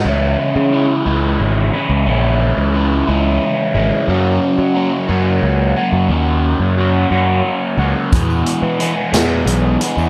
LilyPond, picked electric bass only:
\new Staff \with { instrumentName = "Picked electric bass" } { \clef bass \time 6/8 \key cis \dorian \tempo 4. = 59 cis,8 r16 cis8 r16 cis,8 gis,,8 r16 cis,16 | ais,,8. cis,8. cis,8 r8 gis,,16 r16 | fis,8 r16 fis8 r16 fis,8 cis,8 r16 fis,16 | dis,8. fis,8. fis,8 r8 cis,16 r16 |
e,8 r16 e8 r16 e,8 b,,8 r16 e,16 | }